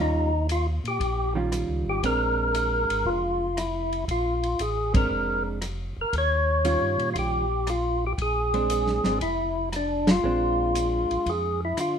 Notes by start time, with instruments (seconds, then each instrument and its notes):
Already playing: tonewheel organ D#2
0.00 hollow-body jazz guitar D#3 G3 C#4 F4, tonewheel organ D#4
0.49 tonewheel organ F4, hi-hat pedal, ride
0.84 tonewheel organ A#2 G4, ride
1.00 tonewheel organ A#1, kick, ride
1.35 hollow-body jazz guitar D#3 G3 C#4 F4
1.52 cross-stick, hi-hat pedal, ride
1.68 tonewheel organ C#2
1.85 tonewheel organ G#1
1.89 tonewheel organ G4
2.03 tonewheel organ A#1 A#4, hollow-body jazz guitar G#3 C4 D4, kick, ride
2.55 hi-hat pedal, ride
2.89 tonewheel organ G#1, ride
3.05 tonewheel organ F1 F4, kick
3.57 tonewheel organ E4, cross-stick, hi-hat pedal, ride
3.93 ride
4.08 tonewheel organ A#1 F4, kick, ride
4.43 ride
4.59 tonewheel organ A1 G#4, hi-hat pedal, ride
4.94 hollow-body jazz guitar G#3 C4 D4, tonewheel organ A#4, kick, ride
5.11 tonewheel organ F1
5.62 cross-stick, hi-hat pedal, ride
5.97 tonewheel organ F1
6.01 tonewheel organ A#4
6.13 tonewheel organ D#2, kick, ride
6.18 tonewheel organ C#5
6.65 hollow-body jazz guitar D#3 G3 C#4 F4, hi-hat pedal, ride
6.81 tonewheel organ G2
6.98 tonewheel organ A#2, ride
7.14 tonewheel organ A#1 F4, kick, ride
7.19 tonewheel organ G4
7.67 tonewheel organ F4, cross-stick, hi-hat pedal, ride
8.06 tonewheel organ G4
8.18 tonewheel organ A#1, kick, ride
8.22 tonewheel organ G#4
8.54 hollow-body jazz guitar G#3 C4 D4, ride
8.70 hi-hat pedal, ride
8.87 snare
9.04 tonewheel organ G#1, hollow-body jazz guitar G#3 C4 D4, snare, ride
9.20 tonewheel organ F1 E4, kick, ride
9.72 tonewheel organ D4, cross-stick, hi-hat pedal, ride
10.07 tonewheel organ F4, snare, ride
10.23 tonewheel organ A#1, hollow-body jazz guitar G#3 C4 D4
10.75 hi-hat pedal, ride
11.10 tonewheel organ A#1, ride
11.26 tonewheel organ F2 G#4, kick, ride
11.65 tonewheel organ E4
11.77 tonewheel organ D3 F4, cross-stick, hi-hat pedal, ride